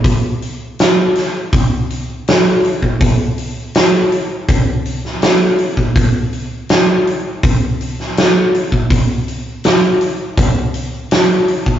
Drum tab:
HH |o-o-o-o-o-o-o-o-|o-o-o-o-o-o-o-o-|o-o-o-o-o-o-o-o-|o-o-o-o-o-o-o-o-|
SD |----o-o-----o---|----o------oo---|----o------oo---|----o-------o---|
BD |o-------o------o|o-------o------o|o-------o------o|o-------o------o|